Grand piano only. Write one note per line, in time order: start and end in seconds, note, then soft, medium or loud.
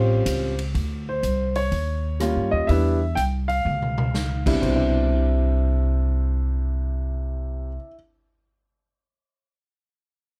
0.00 0.52 G3 medium
0.00 0.52 C4 medium
0.00 0.52 C#4 medium
0.00 0.52 F4 medium
0.00 0.55 G4 medium
0.00 0.54 C5 medium
1.09 1.58 C5 medium
1.56 2.55 C#5 medium
2.20 2.67 G3 medium
2.20 2.69 A#3 soft
2.20 2.69 C#4 soft
2.20 2.69 F4 medium
2.51 2.67 D#5 medium
2.67 2.98 G3 medium
2.67 2.98 B3 medium
2.67 2.98 D4 medium
2.67 2.99 E4 medium
2.67 3.18 E5 medium
3.15 3.23 G5 medium
3.48 4.41 F5 medium
4.46 5.08 B2 medium
4.46 4.49 C3 medium
4.46 5.07 G3 medium
4.46 4.66 D4 medium
4.46 4.74 E4 medium
4.50 7.69 C3 medium
4.61 7.76 C5 medium
4.67 7.85 D4 medium
4.75 7.94 E4 medium